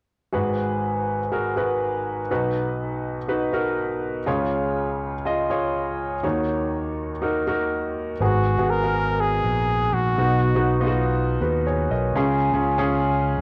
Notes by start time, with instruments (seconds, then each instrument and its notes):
0.33 grand piano G#1 G#2 F#4 G#4 B4
1.32 grand piano F#4 G#4 A#4
1.56 grand piano F#4 G#4 B4
2.31 grand piano B1 B2 D#4 F#4 B4
3.28 grand piano D#4 F#4 B4
3.53 grand piano D#4 F#4 A#4
4.26 grand piano C#2 C#3 F4 G#4 C#5
5.25 grand piano F4 G#4 D#5
5.50 grand piano F4 G#4 C#5
6.23 grand piano D#2 D#3 D#4 F#4 C#5
7.21 grand piano D#4 F#4 A#4
7.47 grand piano D#4 F#4 A#4
8.20 picked electric bass G#1, grand piano G#2 B3 F#4 G#4, trumpet F#4
8.59 picked electric bass G#1, grand piano B3 F#4 G#4
8.70 trumpet A#4
8.83 grand piano B3 F#4 A#4
9.21 trumpet G#4
9.44 picked electric bass A#1
9.93 picked electric bass A#1, trumpet F#4
10.17 picked electric bass B1, grand piano B2 B3 D#4 F#4
10.55 picked electric bass B1, grand piano B3 D#4 F#4
10.80 grand piano B3 D#4 F4
10.87 grand piano F#4
11.41 picked electric bass D#2, grand piano F#4 B4
11.66 grand piano G#4 C#5
11.91 picked electric bass B1, grand piano A#4 D#5
12.14 picked electric bass C#2, grand piano C#3 C#4 F4 G#4
12.52 picked electric bass C#2, grand piano C#4 F4 G#4
12.78 grand piano C#4 F4 G#4
13.38 picked electric bass F2